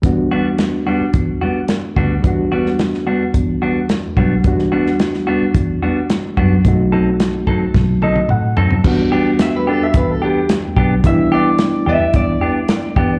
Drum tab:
CC |----------------|----------------|----------------|----------------|
HH |x---x---x---x---|x---x---x---x---|x---x---x---x---|x---x-----------|
SD |----o-------o---|---ooo------o---|-o-ooo------o---|----o---o-------|
T1 |----------------|----------------|----------------|----------oo----|
T2 |----------------|----------------|----------------|------------o---|
FT |----------------|----------------|----------------|--------------oo|
BD |o-------o-----o-|o-------o-----o-|o-------o-----o-|o-----o-o-------|

CC |x---------------|----------------|
HH |----x---x---x---|x---x---x---x---|
SD |----o-------o---|----o-------o---|
T1 |----------------|----------------|
T2 |----------------|----------------|
FT |----------------|----------------|
BD |o-------o-----o-|o-------o-----o-|